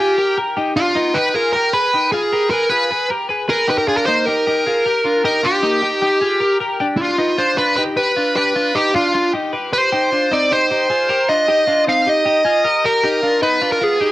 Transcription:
0.00 0.18 F4 medium
0.00 0.37 G4 medium
0.00 0.18 G#4 medium
0.18 0.37 G4 medium
0.18 0.36 A#4 medium
0.37 0.56 G4 medium
0.37 0.57 A#4 medium
0.57 0.76 D#4 medium
0.57 0.76 G4 medium
0.76 0.95 D4 medium
0.76 0.96 F4 medium
0.76 1.16 F4 medium
0.95 1.14 B3 medium
0.95 1.15 D#4 medium
1.14 1.35 D#4 medium
1.14 1.34 G4 medium
1.14 1.35 B4 medium
1.34 1.54 F4 medium
1.34 1.54 G#4 medium
1.34 1.51 A#4 medium
1.53 1.74 G4 medium
1.53 1.73 A#4 medium
1.73 1.93 G#4 medium
1.73 2.12 B4 medium
1.73 1.93 B4 medium
1.94 2.13 D#4 soft
1.94 2.13 G4 medium
2.12 2.33 F4 medium
2.12 2.48 G#4 medium
2.12 2.32 G#4 medium
2.33 2.52 G4 medium
2.33 2.52 A#4 medium
2.51 2.70 G#4 medium
2.51 2.70 A#4 medium
2.51 2.71 B4 medium
2.70 2.91 F4 soft
2.70 2.90 G#4 medium
2.70 3.09 B4 medium
2.91 3.10 G#4 medium
2.91 3.10 B4 medium
3.10 3.30 G4 medium
3.10 3.29 A#4 medium
3.29 3.48 G#4 medium
3.29 3.47 B4 medium
3.48 3.67 G#4 medium
3.48 3.70 A#4 medium
3.48 3.68 B4 medium
3.68 3.87 D#4 medium
3.68 3.86 G4 medium
3.68 3.78 B4 medium
3.78 3.88 A#4 medium
3.87 4.07 D4 medium
3.87 4.07 F4 medium
3.87 3.97 G#4 medium
3.97 4.05 A#4 medium
4.06 4.27 A#3 medium
4.06 4.27 D#4 medium
4.06 4.25 C5 medium
4.25 4.47 D#4 medium
4.25 4.46 G4 medium
4.25 5.24 A#4 medium
4.47 4.66 D#4 medium
4.47 4.66 G4 medium
4.66 4.86 F4 medium
4.66 4.85 G#4 medium
4.86 5.04 G4 medium
4.86 5.05 A#4 medium
5.04 5.24 D4 soft
5.04 5.24 F4 medium
5.24 5.44 D#4 medium
5.24 5.43 G4 medium
5.24 5.45 A#4 medium
5.43 5.62 D4 medium
5.43 5.63 F4 medium
5.43 6.57 G4 medium
5.62 5.83 A#3 medium
5.62 5.81 D#4 medium
5.82 6.01 D#4 medium
5.82 6.01 G4 medium
6.02 6.22 D#4 medium
6.02 6.21 G4 medium
6.21 6.41 F4 medium
6.21 6.40 G#4 medium
6.40 6.60 G4 medium
6.40 6.59 A#4 medium
6.60 6.79 G4 medium
6.60 6.80 A#4 medium
6.80 6.99 D4 medium
6.80 6.99 G4 medium
6.97 7.18 D4 medium
6.97 7.38 F4 medium
6.97 7.18 F4 medium
7.18 7.37 B3 medium
7.18 7.38 D#4 medium
7.38 7.57 D4 medium
7.38 7.56 F4 medium
7.38 7.58 C5 medium
7.58 7.78 D4 medium
7.58 7.77 F4 medium
7.58 7.76 B4 medium
7.77 7.97 D#4 medium
7.77 7.97 G4 medium
7.77 7.82 B4 medium
7.97 8.16 G4 medium
7.97 8.16 B4 medium
7.97 8.35 B4 medium
8.17 8.36 D4 medium
8.17 8.36 F4 medium
8.36 8.55 D4 medium
8.36 8.55 G4 medium
8.36 8.76 B4 medium
8.56 8.74 D4 medium
8.56 8.75 F4 medium
8.75 8.93 B3 medium
8.75 8.94 D#4 medium
8.75 8.95 G4 medium
8.94 9.14 D4 medium
8.94 9.13 F4 medium
8.94 9.31 F4 medium
9.14 9.34 D4 medium
9.14 9.33 F4 medium
9.33 9.53 D#4 medium
9.33 9.52 G4 medium
9.53 9.72 G4 medium
9.53 9.72 B4 medium
9.73 9.91 G4 soft
9.73 9.92 B4 medium
9.73 10.33 C5 medium
9.92 10.12 D#4 medium
9.92 10.11 G4 medium
10.12 10.31 D4 soft
10.12 10.31 F4 medium
10.31 10.51 C4 medium
10.31 10.50 D#4 medium
10.31 10.52 D5 medium
10.51 10.70 D#4 medium
10.51 10.69 G4 medium
10.51 11.31 C5 medium
10.71 10.90 D#4 medium
10.71 10.89 G4 medium
10.90 11.09 F4 medium
10.90 11.09 G#4 medium
11.09 11.28 G4 medium
11.09 11.28 A#4 medium
11.28 11.48 D4 soft
11.28 11.48 F4 medium
11.28 11.83 D#5 medium
11.48 11.68 D#4 medium
11.48 11.67 G4 medium
11.67 11.87 D4 medium
11.67 11.87 F4 medium
11.87 12.07 C4 medium
11.87 12.06 D#4 medium
11.87 12.09 F5 medium
12.07 12.25 D#4 medium
12.07 12.24 G4 medium
12.07 12.88 D#5 medium
12.26 12.45 D#4 medium
12.26 12.44 G4 medium
12.45 12.65 F4 medium
12.45 12.65 G#4 medium
12.65 12.84 G4 medium
12.65 12.83 A#4 medium
12.84 13.02 G4 medium
12.84 13.04 A#4 medium
12.84 13.39 A#4 medium
13.03 13.23 D#4 medium
13.03 13.22 G4 medium
13.22 13.41 D4 medium
13.22 13.42 F4 medium
13.42 13.61 B3 medium
13.42 13.62 D#4 medium
13.42 13.72 B4 medium
13.61 13.81 D4 soft
13.61 13.80 F4 medium
13.72 13.84 A#4 medium
13.81 14.00 B3 medium
13.81 14.01 F4 medium
13.81 14.12 G#4 medium
14.01 14.12 D#4 medium
14.01 14.12 G4 medium

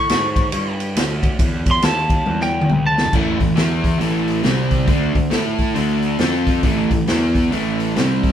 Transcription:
0.00 0.77 C#6 loud
0.09 0.52 G#2 loud
0.09 snare loud
0.09 ride medium
0.36 kick medium
0.36 ride medium
0.52 0.95 G2 loud
0.52 ride loud
0.80 ride medium
0.96 1.38 D2 medium
0.96 snare loud
0.96 ride loud
1.23 kick medium
1.23 ride medium
1.39 1.82 E2 medium
1.39 kick loud
1.39 ride medium
1.66 kick medium
1.66 ride medium
1.71 1.84 C6 loud
1.82 2.25 D#2 loud
1.82 2.40 A5 loud
1.82 snare loud
1.82 ride medium
2.10 kick medium
2.10 ride medium
2.26 2.69 E2 medium
2.26 high tom medium
2.41 2.84 G5 loud
2.41 snare medium
2.61 mid tom medium
2.69 3.13 C#2 medium
2.69 mid tom loud
2.87 3.14 A5 loud
2.98 snare loud
3.05 floor tom medium
3.13 3.39 A1 medium
3.13 3.39 A2 medium
3.13 3.40 E3 loud
3.13 3.40 A3 loud
3.13 kick loud
3.13 crash medium
3.40 3.56 A1 medium
3.40 3.54 A2 medium
3.40 3.54 E3 medium
3.40 kick medium
3.40 open hi-hat soft
3.56 3.98 E2 medium
3.56 3.99 E3 medium
3.56 3.99 B3 medium
3.56 4.00 E4 loud
3.56 snare loud
3.56 open hi-hat medium
3.84 kick medium
3.84 open hi-hat medium
3.99 4.41 A1 medium
3.99 4.43 A2 medium
3.99 4.43 E3 loud
3.99 4.44 A3 loud
3.99 open hi-hat medium
4.28 open hi-hat soft
4.43 4.85 C2 medium
4.43 4.87 C3 medium
4.43 4.87 G3 medium
4.43 4.88 C4 loud
4.43 snare loud
4.43 open hi-hat medium
4.71 kick medium
4.71 open hi-hat medium
4.87 5.13 D2 medium
4.87 5.13 D3 medium
4.87 5.14 A3 medium
4.87 5.15 D4 loud
4.87 kick medium
4.87 open hi-hat medium
5.14 5.31 D2 medium
5.14 5.28 D3 medium
5.14 5.28 A3 medium
5.14 kick medium
5.14 open hi-hat soft
5.31 5.73 A2 medium
5.31 5.74 A3 medium
5.31 5.75 E4 medium
5.31 5.75 A4 loud
5.31 snare loud
5.31 open hi-hat medium
5.58 kick medium
5.58 open hi-hat soft
5.74 6.17 D2 medium
5.74 6.18 D3 medium
5.74 6.19 A3 loud
5.74 6.19 D4 medium
5.74 open hi-hat medium
6.02 open hi-hat soft
6.19 6.60 F2 medium
6.19 6.64 F3 medium
6.19 6.64 C4 medium
6.19 6.64 F4 loud
6.19 snare loud
6.19 open hi-hat medium
6.47 kick medium
6.47 open hi-hat soft
6.63 6.89 A1 medium
6.63 6.90 A2 medium
6.63 6.90 E3 medium
6.63 6.91 A3 medium
6.63 kick medium
6.63 open hi-hat medium
6.91 7.06 A1 medium
6.91 7.05 A2 medium
6.91 7.06 E3 medium
6.91 kick medium
6.91 open hi-hat soft
7.07 7.49 E2 medium
7.07 7.51 E3 loud
7.07 7.51 B3 loud
7.07 7.52 E4 medium
7.07 snare loud
7.07 open hi-hat medium
7.35 kick medium
7.35 open hi-hat soft
7.52 7.93 A1 medium
7.52 7.95 A2 medium
7.52 7.95 E3 medium
7.52 7.96 A3 loud
7.52 open hi-hat medium
7.80 open hi-hat soft
7.96 8.32 C2 medium
7.96 8.32 C3 medium
7.96 8.32 G3 loud
7.96 8.32 C4 loud
7.96 snare loud
7.96 open hi-hat medium
8.23 kick medium
8.23 open hi-hat soft

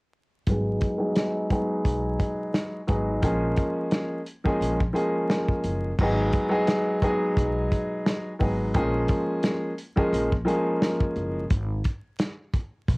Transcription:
0.47 0.77 G#1 loud
0.47 0.96 F#3 medium
0.47 0.96 G#3 medium
0.47 0.97 B3 medium
0.47 0.97 D#4 medium
0.47 kick loud
0.47 closed hi-hat medium
0.51 0.98 G#4 loud
0.81 kick medium
0.81 closed hi-hat medium
0.97 1.45 F#3 medium
0.97 1.46 G#3 medium
0.97 1.46 B3 medium
0.97 1.46 D#4 medium
0.97 1.46 G#4 loud
1.15 snare loud
1.15 closed hi-hat medium
1.50 2.78 F#3 medium
1.50 2.78 G#3 medium
1.50 2.79 B3 medium
1.50 2.79 D#4 medium
1.50 2.79 G#4 loud
1.50 kick medium
1.50 closed hi-hat medium
1.85 2.15 B1 medium
1.85 kick medium
1.85 closed hi-hat medium
2.20 kick medium
2.20 closed hi-hat medium
2.54 snare loud
2.54 closed hi-hat medium
2.87 3.19 G#1 medium
2.87 3.20 F#3 medium
2.87 3.20 G#3 medium
2.87 3.21 B3 medium
2.87 3.21 D#4 medium
2.87 3.21 G#4 medium
2.87 kick medium
2.87 closed hi-hat medium
3.22 3.53 A#1 loud
3.22 4.18 F3 medium
3.22 4.19 G#3 medium
3.22 4.19 A#3 medium
3.22 4.19 C#4 medium
3.22 4.20 G#4 loud
3.22 kick loud
3.22 closed hi-hat loud
3.57 kick medium
3.57 closed hi-hat medium
3.91 snare loud
3.91 closed hi-hat medium
4.26 closed hi-hat medium
4.44 4.76 F3 medium
4.44 4.76 G#3 medium
4.44 4.77 A#3 medium
4.44 4.77 C#4 medium
4.44 4.77 G#4 loud
4.44 kick medium
4.61 4.91 A#1 medium
4.61 closed hi-hat medium
4.80 kick medium
4.93 5.90 F3 medium
4.93 5.90 G#3 medium
4.93 5.91 A#3 medium
4.93 5.91 C#4 medium
4.93 5.91 G#4 loud
4.93 closed hi-hat medium
5.30 snare loud
5.30 closed hi-hat medium
5.49 kick medium
5.64 5.94 F#1 medium
5.64 closed hi-hat medium
5.99 6.29 G#1 loud
5.99 6.48 F#3 medium
5.99 6.48 G#3 medium
5.99 6.49 B3 medium
5.99 6.49 D#4 medium
5.99 kick loud
5.99 crash loud
6.03 6.50 G#4 loud
6.33 kick loud
6.33 closed hi-hat medium
6.49 6.97 F#3 loud
6.49 6.97 G#3 medium
6.49 6.98 B3 medium
6.49 6.98 D#4 medium
6.49 6.98 G#4 loud
6.67 snare loud
6.67 closed hi-hat medium
7.02 8.30 F#3 medium
7.02 8.30 G#3 medium
7.02 8.31 B3 medium
7.02 8.31 D#4 medium
7.02 8.31 G#4 loud
7.02 kick medium
7.02 closed hi-hat medium
7.37 7.67 B1 loud
7.37 kick medium
7.37 closed hi-hat medium
7.72 kick medium
7.72 closed hi-hat medium
8.06 snare loud
8.06 closed hi-hat medium
8.39 8.70 G#1 medium
8.39 8.72 F#3 medium
8.39 8.72 G#3 medium
8.39 8.72 B3 medium
8.39 8.72 D#4 medium
8.39 8.73 G#4 medium
8.39 kick medium
8.39 open hi-hat soft
8.74 9.05 A#1 loud
8.74 9.70 F3 medium
8.74 9.70 G#3 medium
8.74 9.71 A#3 medium
8.74 9.71 C#4 medium
8.74 9.71 G#4 loud
8.74 kick loud
8.74 closed hi-hat loud
9.08 kick loud
9.08 closed hi-hat medium
9.43 snare loud
9.43 closed hi-hat medium
9.78 closed hi-hat medium
9.96 10.28 F3 medium
9.96 10.28 G#3 medium
9.96 10.28 A#3 medium
9.96 10.29 C#4 medium
9.96 10.29 G#4 loud
9.96 kick loud
10.13 10.43 A#1 loud
10.13 closed hi-hat medium
10.32 kick loud
10.45 11.42 F3 medium
10.45 11.42 G#3 medium
10.45 11.42 A#3 medium
10.45 11.43 C#4 medium
10.45 11.43 G#4 loud
10.45 closed hi-hat medium
10.82 snare loud
10.82 closed hi-hat medium
11.00 kick loud
11.16 11.46 F#1 medium
11.16 closed hi-hat medium
11.50 11.81 G#1 loud
11.50 kick loud
11.50 closed hi-hat loud
11.84 kick medium
11.84 closed hi-hat medium
12.19 snare loud
12.19 closed hi-hat medium
12.54 kick loud
12.54 closed hi-hat medium
12.88 12.98 B1 loud
12.88 kick loud
12.88 closed hi-hat medium

